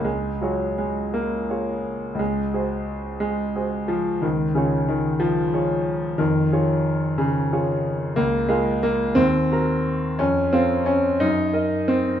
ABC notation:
X:1
M:6/8
L:1/8
Q:3/8=59
K:Db
V:1 name="Grand piano"
D,, [FAd]3 [FAd]2 | D,, [GAc]3 [GAc]2 | D,, [FAd]3 [FAd]2 | F,, [FAd]3 [FAd]2 |
[K:Ebdor] D,, [FBf]2 E,, [GBb]2 | F,, [F=Af]2 G,, [Be]2 |]
V:2 name="Grand piano" clef=bass
A, G, A, B,3 | A,3 A,2 F, | E, D, E, F,3 | E,3 D, z2 |
[K:Ebdor] B, A, B, C3 | D C D E2 C |]